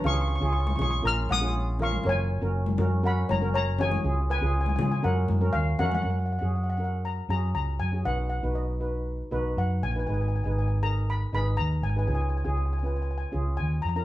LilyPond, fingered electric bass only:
\new Staff \with { instrumentName = "Fingered electric bass" } { \clef bass \time 4/4 \key fis \major \tempo 4 = 119 cis,8. cis,8. b,,8 ais,,8 ais,,4. | fis,,8. fis,,8. fis,4 fis,,4. | cis,8. cis,8. cis8 fis,8 fis,8 dis,8 eis,8 | fis,8. fis,4.~ fis,16 fis,8 cis,8 fis,8 |
b,,8. b,,4.~ b,,16 b,,8 fis,8 ais,,8 | gis,,8. gis,,4.~ gis,,16 gis,,8 dis,8 gis,,8 | cis,8. cis,4.~ cis,16 cis,8 dis,8 eis,8 | }